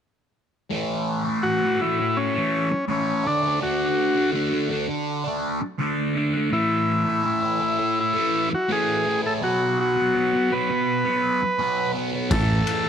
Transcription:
0.70 distorted electric guitar A2 E3 A3
1.24 distorted electric guitar E3 A3
1.43 distorted electric guitar A2 E3 A3, transistor combo organ F#4
1.62 distorted electric guitar E3 A3
1.80 distorted electric guitar A2 E3 A3, transistor combo organ E4
1.99 muted distorted electric guitar stroke
2.17 transistor combo organ C#4
2.34 distorted electric guitar E3 A3
2.71 muted distorted electric guitar stroke
2.88 distorted electric guitar A2 E3 A3, transistor combo organ C#4
3.24 distorted electric guitar D3 A3 D4, transistor combo organ D4
3.42 distorted electric guitar A3 D4
3.60 distorted electric guitar D3 A3 D4, transistor combo organ F#4
4.14 distorted electric guitar A3 D4
4.32 distorted electric guitar D3 A3 D4
4.50 distorted electric guitar A3 D4
4.70 distorted electric guitar D3 A3 D4
4.88 muted distorted electric guitar stroke
5.24 distorted electric guitar A3 D4
5.62 muted distorted electric guitar stroke
5.79 distorted electric guitar D3 A3 D4
6.15 distorted electric guitar D3 A3 D4
6.34 distorted electric guitar A3 D4
6.51 distorted electric guitar A2 E3 A3, transistor combo organ E4
7.05 distorted electric guitar A3
7.10 distorted electric guitar E3
7.23 distorted electric guitar A2 E3 A3
7.42 distorted electric guitar E3 A3
7.60 distorted electric guitar A2 E3 A3
7.79 muted distorted electric guitar stroke
8.00 transistor combo organ E4
8.13 distorted electric guitar E3 A3
8.51 transistor combo organ F#4, muted distorted electric guitar stroke
8.68 distorted electric guitar A2 E3 A3, transistor combo organ G#4
9.05 distorted electric guitar A2 E3 A3
9.24 distorted electric guitar E3 A3, transistor combo organ A4
9.41 distorted electric guitar B2 F#3 B3, transistor combo organ F#4
9.81 transistor combo organ F#4
9.96 distorted electric guitar F#3 B3
10.14 distorted electric guitar B2 F#3 B3
10.33 distorted electric guitar F#3 B3
10.51 distorted electric guitar B2 F#3 B3, transistor combo organ B4
10.69 muted distorted electric guitar stroke
11.05 distorted electric guitar F#3 B3
11.42 muted distorted electric guitar stroke
11.59 distorted electric guitar B2 F#3 B3
11.94 distorted electric guitar B2 F#3 B3
12.12 distorted electric guitar F#3 B3
12.30 picked electric bass A1, distorted electric guitar A2 E3 A3, transistor combo organ A4, kick, ride
12.67 ride
12.84 distorted electric guitar A3

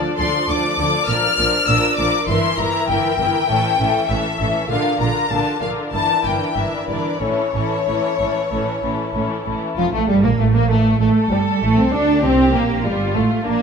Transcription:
Already playing: viola section F3 D4, violin section A4 D5
0.18 double bass section D2, cello section D3, viola section F3 D4, violin section A4 D5 C6
0.48 double bass section D2, cello section D3, viola section F3 D4, violin section A4 D5 D6
0.78 double bass section D2, cello section D3, viola section F3 D4, violin section A4 D5
1.08 double bass section A#1, cello section A#2, viola section F3 D4, violin section A#4 D5 F6
1.38 double bass section A#1, cello section A#2, viola section F3 D4, violin section A#4 D5
1.68 double bass section A#1, cello section A#2, viola section F3 D4, violin section A#4 D5 E6
1.98 double bass section A#1, cello section A#2, viola section F3 D4, violin section A#4 D5 D6
2.28 double bass section G1, cello section G2, viola section E3 E4, violin section A#4 E5 C6
2.58 double bass section G1, cello section G2, viola section E3 E4, violin section A#4 E5 A#5
2.89 double bass section G1, cello section G2, viola section E3 E4, violin section A#4 E5 G5
3.19 double bass section G1, cello section G2, viola section E3 E4, violin section A#4 E5
3.49 double bass section A1, cello section A2, viola section E3 C#4, violin section A4 E5
3.79 double bass section A1, cello section A2, viola section E3 C#4, violin section A4 E5
4.09 double bass section A1, cello section A2, viola section E3 C#4, violin section A4 E5
4.39 double bass section A1, cello section A2, viola section E3 C#4, violin section A4 E5
4.69 double bass section A#1, cello section A#2, viola section D3 D4, violin section F4 A#4 F5
5.00 double bass section A#1, cello section A#2, viola section D3 D4, violin section F4 A#4 A#5
5.31 double bass section A#1, cello section A#2, viola section D3 D4, violin section F4 A#4 A5
5.62 double bass section A#1, cello section A#2, viola section D3 D4, violin section F4 A#4 F5
5.92 double bass section G1, cello section G2, viola section E3 D4, violin section E4 A#4 A5
6.24 double bass section G1, cello section G2, viola section E3 D4, violin section E4 A#4 G5
6.55 double bass section G1, cello section G2, viola section E3 D4, violin section E4 A#4 E5
6.87 double bass section G1, cello section G2, viola section E3 D4, violin section E4 A#4 D5
7.20 double bass section A1, cello section A2, viola section E3 C#4, violin section E4 A4 C#5
7.54 double bass section A1, cello section A2, viola section E3 C#4, violin section E4 A4
7.87 double bass section A1, cello section A2, viola section E3 C#4, violin section E4 A4
8.19 double bass section A1, cello section A2, viola section E3 C#4, violin section E4 A4
8.51 double bass section A1, cello section A2, viola section E3 C#4, violin section E4 A4
8.82 double bass section A1, cello section A2, viola section E3 C#4, violin section E4 A4
9.13 double bass section A1, cello section A2, viola section E3 C#4, violin section E4 A4
9.46 double bass section A1, cello section A2, viola section E3 C#4, violin section E4 A4
9.77 double bass section F1, viola section F3, cello section F3, violin section F4
9.93 double bass section A1, violin section A3, viola section A3, cello section A3
10.07 double bass section G1, viola section G3, violin section G3, cello section G3
10.23 double bass section A#1, viola section A#3, violin section A#3, cello section A#3
10.38 double bass section A1, viola section A3, cello section A3, violin section A3
10.53 double bass section A#1, viola section A#3, violin section A#3, cello section A#3
10.69 double bass section A1, viola section A3, violin section A3, cello section A3
10.99 double bass section A1, viola section A3, cello section A3, violin section A3 A4
11.30 double bass section G1, viola section G3, cello section G3, violin section G3
11.61 double bass section A1, viola section A3, cello section A3, violin section A3
11.76 double bass section C2, viola section C4, violin section C4, cello section C4
11.92 double bass section D2, viola section D4, cello section D4, violin section D4
12.23 double bass section C2, viola section C4, violin section C4 G4, cello section C4
12.53 double bass section A#1, violin section A#3, viola section A#3, cello section A#3
12.84 double bass section G1, cello section G3, viola section G3, violin section G3 F4
13.14 double bass section A1, violin section A3, viola section A3, cello section A3
13.46 double bass section A#1, cello section A#3, viola section A#3, violin section A#3 D4

